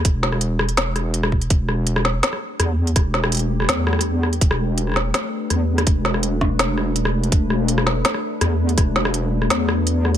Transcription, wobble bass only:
X:1
M:4/4
L:1/8
Q:1/4=165
K:Em
V:1 name="Wobble bass" clef=bass
E,,,4 E,,,4 | E,,,4 z2 E,,2 | E,,,4 E,,4 | E,,,4 z2 E,,2 |
E,,,4 E,,,4 | E,,,4 z2 E,,2 | E,,,4 E,,4 |]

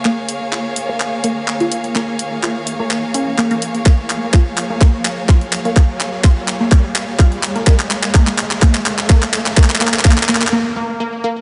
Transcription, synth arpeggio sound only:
X:1
M:4/4
L:1/16
Q:"Swing 16ths" 1/4=126
K:Bbm
V:1 name="Synth arpeggio sound"
B, z3 F z2 B, z2 B, z2 F z2 | B, z3 F z2 B, z2 D z B, B, z2 | B, z3 F z2 B, B, z3 F z2 B, | B, z3 F z2 B, B, z3 F z2 B, |
B, z3 B, z3 B, z3 B, z3 | B, z B, z B, z B, z B, z B, z B, z B, z |]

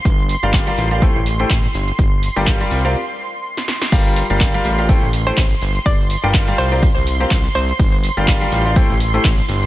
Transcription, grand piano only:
X:1
M:4/4
L:1/16
Q:"Swing 16ths" 1/4=124
K:Gdor
V:1 name="Grand piano"
z3 [G,FGBdf] [G,FGBdf] [G,FGBdf]2 [FGBdf] [A,EGAcg] z2 [A,EGAcg] z4 | z3 [G,FGBdg] [FGBd] [G,FGBdf]2 [CFGBdf] z8 | [G,FGBdf]3 [G,FGBdf] [G,FGd] [G,FGBdf]2 [FGBdf] [A,EGAcg] z2 [A,EGAcg] z4 | z3 [G,FGBdg] [G,FGBf] [G,FGBdf]2 [CFGBdf] z3 [CFGBcf] z4 |
z3 [G,FGBdf] [Ff] [G,FGBdf]2 [FGBdf] [A,EGAcg] z2 [A,EGAcg] z4 |]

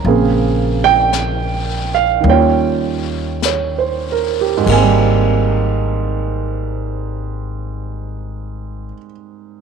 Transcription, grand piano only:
X:1
M:4/4
L:1/16
Q:"Swing" 1/4=48
K:Ab
V:1 name="Grand piano"
z2 g4 f2 g4 d c B G | a16 |]
V:2 name="Grand piano"
[D,B,CA]8 [E,G,DFd]8 | [A,,G,A,B,C]16 |]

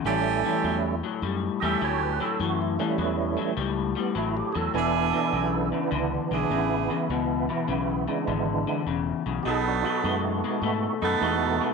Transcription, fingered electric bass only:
X:1
M:4/4
L:1/8
Q:"Swing" 1/4=102
K:A
V:1 name="Fingered electric bass" clef=bass
A,,,2 E,,2 F,, E,, D,,2 | F,,2 E,,2 C,,2 A,,, E,, | E,,,2 B,,,2 C,, B,,, A,,,2 | C,,2 B,,,2 G,,,2 E,,, B,,, |
B,,,2 F,,2 G,, F,, E,,2 |]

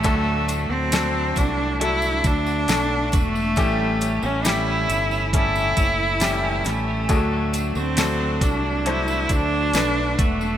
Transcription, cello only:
X:1
M:4/4
L:1/16
Q:1/4=68
K:Dmix
V:1 name="Cello"
A,3 C3 D2 E2 D4 A,2- | A,3 ^C E4 E6 A,2- | A,3 C3 D2 E2 D4 A,2 |]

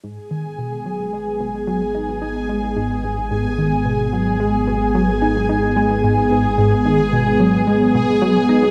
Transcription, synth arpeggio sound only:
X:1
M:4/4
L:1/8
Q:1/4=110
K:G#m
V:1 name="Synth arpeggio sound" clef=bass
G,, D, B,, F, G, B,, F, D | D G, G,, G,, G,, D, B,, F, | G, B,, F, D D G, G,, G,, | G,, D, B,, F, G, B,, F, D |]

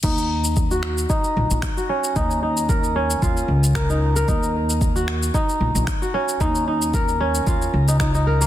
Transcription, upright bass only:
X:1
M:4/4
L:1/16
Q:"Swing 16ths" 1/4=113
K:Ebm
V:1 name="Upright bass" clef=bass
E,,8 z2 B,,, B,,, z4 | E,,8 E,, z D,,6 | E,,8 z2 B,,, B,,, z4 | E,,8 E,, z D,,6 |]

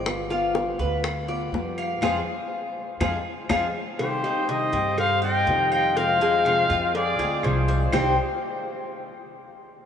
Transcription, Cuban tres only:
X:1
M:4/4
L:1/8
Q:1/4=122
K:Cm
V:1 name="Cuban tres"
d F2 =B2 d2 f | [FAc] z3 [FAc] z [FAc] z | z E2 G2 c2 f | F A2 F2 A2 c |
[CGc] z6 z |]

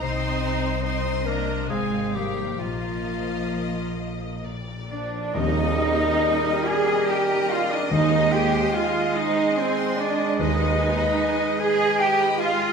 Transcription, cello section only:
X:1
M:3/4
L:1/16
Q:1/4=71
K:Eb
V:1 name="Cello section"
C4 C2 B,2 A,2 G,2 | F,8 z2 D2 | E6 A2 G2 F D | E2 G2 F2 E2 C2 D2 |
E6 A2 G2 F2 |]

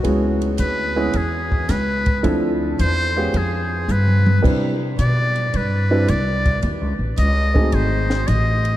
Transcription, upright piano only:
X:1
M:4/4
L:1/8
Q:"Swing" 1/4=110
K:C#phr
V:1 name="Upright piano"
[G,B,CEG]3 [G,B,CEG] z4 | [=F,=CDEA]3 [G,B,^C=F=G] z4 | [=G,=CDEB] z4 [G,CDEB] z2 | z3 [F,A,=C^DG]3 z2 |]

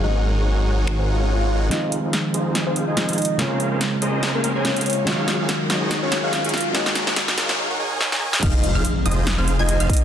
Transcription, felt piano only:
X:1
M:4/4
L:1/8
Q:"Swing 16ths" 1/4=143
K:Fphr
V:1 name="Felt piano"
[G,B,DEA]8 | [E,F,A,CF]6 [E,F,A,CF]2 | [D,A,B,CF]6 [D,A,B,CF]2 | [E,G,A,DF]6 [E,G,A,DF]2 |
[E,A,B,DG]4 z4 | z8 |]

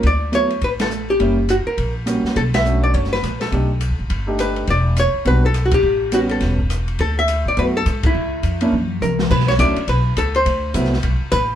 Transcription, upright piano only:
X:1
M:4/4
L:1/8
Q:"Swing" 1/4=208
K:D
V:1 name="Upright piano"
z2 [F,A,B,E] z4 z | [G,^A,CE] z4 z [G,A,CF]2 | z2 [A,CDF]3 z3 | [A,D^DG] z4 [A,=D^DG]3 |
z4 [G,B,DF] z3 | z2 [G,B,CF]3 z3 | z4 [A,B,EF] z3 | z3 [^A,CDE] z4 |
z2 [F,A,CDE] z4 z | z2 [F,A,B,=CE] z4 z |]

